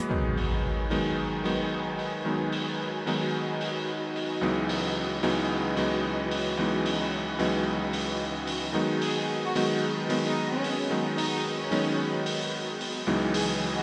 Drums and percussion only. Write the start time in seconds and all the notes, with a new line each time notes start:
0.37 open hi-hat
0.91 open hi-hat
1.45 open hi-hat
1.99 open hi-hat
2.52 open hi-hat
3.07 open hi-hat
3.61 open hi-hat
4.16 open hi-hat
4.69 open hi-hat
5.23 open hi-hat
5.77 open hi-hat
6.31 open hi-hat
6.86 open hi-hat
7.39 open hi-hat
7.93 open hi-hat
8.47 open hi-hat
9.02 open hi-hat
9.56 open hi-hat
10.10 open hi-hat
10.64 open hi-hat
11.18 open hi-hat
11.72 open hi-hat
12.26 open hi-hat
12.81 open hi-hat
13.34 open hi-hat